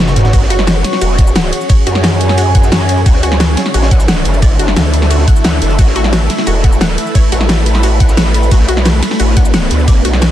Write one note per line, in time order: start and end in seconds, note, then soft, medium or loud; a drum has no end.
0.00 0.32 F#1 medium
0.00 1.08 B3 medium
0.00 3.80 F#4 medium
0.00 3.59 C#5 loud
0.07 snare loud
0.07 closed hi-hat medium
0.07 mid tom medium
0.07 shaker soft
0.16 snare loud
0.16 closed hi-hat medium
0.16 closed hi-hat loud
0.16 mid tom medium
0.25 snare loud
0.25 closed hi-hat medium
0.25 mid tom medium
0.25 shaker soft
0.33 0.83 F#1 loud
0.33 3.03 F#3 medium
0.33 3.03 C#4 medium
0.33 0.38 F#4 medium
0.33 3.03 G#4 medium
0.33 kick loud
0.33 closed hi-hat medium
0.33 ride medium
0.33 shaker medium
0.42 snare medium
0.50 0.58 F#4 loud
0.50 4.14 G#5 medium
0.50 closed hi-hat loud
0.50 closed hi-hat medium
0.50 shaker soft
0.59 snare medium
0.67 0.79 F#4 medium
0.67 snare loud
0.67 closed hi-hat medium
0.67 ride medium
0.67 shaker soft
0.84 snare medium
0.84 closed hi-hat loud
0.84 open hi-hat medium
0.93 snare medium
0.93 snare soft
1.01 1.51 E1 medium
1.01 1.09 F#4 medium
1.01 closed hi-hat medium
1.01 ride medium
1.01 shaker soft
1.18 1.26 F#5 medium
1.18 kick loud
1.18 closed hi-hat medium
1.18 closed hi-hat loud
1.18 shaker soft
1.27 shaker medium
1.36 1.47 F#5 medium
1.36 snare loud
1.36 closed hi-hat medium
1.36 ride medium
1.36 shaker soft
1.52 closed hi-hat medium
1.61 shaker soft
1.69 1.74 C#5 medium
1.69 kick loud
1.69 closed hi-hat medium
1.69 ride medium
1.69 shaker soft
1.86 2.71 F#2 loud
1.86 1.94 F#4 medium
1.86 closed hi-hat medium
1.86 closed hi-hat loud
1.86 shaker soft
1.95 snare medium
2.03 2.15 F#4 medium
2.03 snare loud
2.03 closed hi-hat medium
2.03 ride medium
2.03 shaker soft
2.12 snare medium
2.20 closed hi-hat medium
2.29 snare soft
2.29 closed hi-hat soft
2.37 2.46 F#4 medium
2.37 closed hi-hat loud
2.37 closed hi-hat medium
2.37 ride medium
2.37 shaker soft
2.55 2.63 F#5 medium
2.55 kick loud
2.55 closed hi-hat medium
2.55 shaker soft
2.63 snare soft
2.63 shaker medium
2.72 3.05 F#2 loud
2.72 2.80 F#4 medium
2.72 snare loud
2.72 closed hi-hat medium
2.72 ride medium
2.72 shaker soft
2.89 closed hi-hat medium
2.97 closed hi-hat soft
2.97 shaker soft
3.06 3.56 D2 loud
3.06 5.76 D3 medium
3.06 10.31 A3 medium
3.06 5.79 D4 medium
3.06 8.47 E4 medium
3.06 3.11 F#4 medium
3.06 kick loud
3.06 closed hi-hat medium
3.06 ride medium
3.06 shaker soft
3.12 9.43 A4 medium
3.12 snare medium
3.23 3.31 F#4 loud
3.23 closed hi-hat medium
3.23 shaker soft
3.32 snare medium
3.40 3.52 F#4 medium
3.40 snare loud
3.40 closed hi-hat medium
3.40 ride medium
3.40 shaker soft
3.57 snare loud
3.57 snare soft
3.57 closed hi-hat medium
3.62 9.49 E5 medium
3.62 snare soft
3.74 4.24 A1 loud
3.74 3.82 F#4 medium
3.74 closed hi-hat medium
3.74 ride medium
3.74 shaker soft
3.82 snare loud
3.82 closed hi-hat medium
3.91 3.99 F#5 medium
3.91 kick loud
3.91 closed hi-hat medium
3.91 shaker soft
4.00 closed hi-hat medium
4.00 shaker medium
4.08 4.20 F#5 medium
4.08 snare loud
4.08 closed hi-hat medium
4.08 ride medium
4.08 shaker soft
4.25 4.75 F#1 medium
4.25 closed hi-hat medium
4.34 shaker soft
4.42 4.47 D5 medium
4.42 kick loud
4.42 closed hi-hat medium
4.42 ride medium
4.42 shaker soft
4.59 4.67 F#4 medium
4.59 closed hi-hat medium
4.59 shaker soft
4.68 snare medium
4.76 5.26 D2 loud
4.76 4.88 F#4 medium
4.76 snare loud
4.76 closed hi-hat medium
4.76 ride medium
4.76 shaker soft
4.84 snare medium
4.93 closed hi-hat medium
5.02 snare soft
5.02 closed hi-hat soft
5.10 5.18 F#4 medium
5.10 closed hi-hat medium
5.10 ride medium
5.10 shaker soft
5.18 snare medium
5.28 5.35 F#5 medium
5.28 kick loud
5.28 closed hi-hat medium
5.28 shaker soft
5.36 shaker medium
5.44 5.60 D2 loud
5.44 5.52 F#5 medium
5.44 snare loud
5.44 closed hi-hat medium
5.44 ride medium
5.44 shaker soft
5.62 5.77 F#1 medium
5.62 closed hi-hat medium
5.70 closed hi-hat soft
5.70 shaker soft
5.78 6.29 A1 loud
5.78 5.83 F#4 medium
5.78 8.49 B4 medium
5.78 kick loud
5.78 closed hi-hat medium
5.78 ride medium
5.78 shaker medium
5.87 snare medium
5.95 6.03 F#4 loud
5.95 closed hi-hat medium
5.95 shaker soft
6.04 snare medium
6.13 6.24 F#4 medium
6.13 snare loud
6.13 closed hi-hat medium
6.13 ride medium
6.13 shaker medium
6.29 9.51 B5 medium
6.29 snare soft
6.29 closed hi-hat medium
6.29 open hi-hat medium
6.38 snare soft
6.46 6.97 E1 loud
6.46 6.55 F#4 medium
6.46 closed hi-hat loud
6.46 closed hi-hat medium
6.46 ride medium
6.46 shaker medium
6.64 6.72 F#5 medium
6.64 kick loud
6.64 closed hi-hat medium
6.64 shaker soft
6.72 shaker medium
6.81 6.93 F#5 medium
6.81 snare loud
6.81 closed hi-hat medium
6.81 ride medium
6.81 shaker soft
6.98 closed hi-hat medium
7.07 shaker soft
7.15 7.20 C#5 medium
7.15 kick loud
7.15 closed hi-hat loud
7.15 closed hi-hat medium
7.15 ride medium
7.15 shaker medium
7.32 8.16 A1 loud
7.32 7.40 F#4 medium
7.32 closed hi-hat medium
7.32 shaker soft
7.41 snare medium
7.49 7.61 F#4 medium
7.49 snare loud
7.49 closed hi-hat medium
7.49 ride medium
7.49 shaker medium
7.57 snare medium
7.66 closed hi-hat medium
7.74 snare soft
7.74 closed hi-hat soft
7.83 7.91 F#4 medium
7.83 closed hi-hat medium
7.83 closed hi-hat loud
7.83 ride medium
7.83 shaker medium
8.00 8.08 F#5 medium
8.00 kick loud
8.00 closed hi-hat medium
8.00 shaker soft
8.09 snare soft
8.09 shaker medium
8.17 8.50 A1 loud
8.17 8.25 F#4 medium
8.17 snare loud
8.17 closed hi-hat medium
8.17 ride medium
8.17 shaker medium
8.34 closed hi-hat medium
8.43 closed hi-hat soft
8.43 shaker soft
8.51 9.01 B1 loud
8.51 10.31 B3 medium
8.51 10.31 D4 medium
8.51 8.56 F#4 medium
8.51 kick loud
8.51 closed hi-hat medium
8.51 closed hi-hat loud
8.51 ride medium
8.51 shaker medium
8.60 10.31 F#4 medium
8.60 snare medium
8.68 8.76 F#4 loud
8.68 closed hi-hat medium
8.68 shaker soft
8.77 snare medium
8.85 8.97 F#4 medium
8.85 snare loud
8.85 closed hi-hat medium
8.85 ride medium
8.85 shaker medium
9.01 10.31 C#5 medium
9.01 snare soft
9.01 closed hi-hat loud
9.01 open hi-hat medium
9.11 snare soft
9.20 9.69 A1 loud
9.20 9.27 F#4 medium
9.20 closed hi-hat medium
9.20 ride medium
9.20 shaker soft
9.37 9.44 F#5 medium
9.37 kick loud
9.37 closed hi-hat loud
9.37 closed hi-hat medium
9.37 shaker soft
9.45 shaker medium
9.54 9.65 F#5 medium
9.54 snare loud
9.54 closed hi-hat medium
9.54 ride medium
9.54 shaker medium
9.70 10.04 D2 loud
9.70 closed hi-hat medium
9.70 closed hi-hat loud
9.79 shaker soft
9.88 9.92 D5 medium
9.88 kick loud
9.88 closed hi-hat medium
9.88 closed hi-hat loud
9.88 ride medium
9.88 shaker medium
10.05 10.31 B1 loud
10.05 10.13 F#4 medium
10.05 closed hi-hat loud
10.05 closed hi-hat medium
10.05 shaker soft
10.13 snare medium
10.22 10.31 F#4 medium
10.22 snare loud
10.22 closed hi-hat medium
10.22 ride medium
10.22 shaker medium